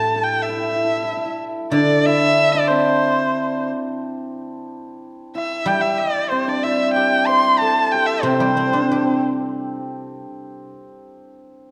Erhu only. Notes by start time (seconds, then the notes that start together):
Already playing: A5
0.24 G5
0.43 E5
1.72 D5
2.06 E5
2.52 D5
2.68 C5
5.36 E5
5.68 G5
5.81 E5
5.98 D5
6.29 C5
6.49 D5
6.64 E5
6.94 G5
7.27 C6
7.59 A5
7.92 G5
8.06 E5
8.24 C5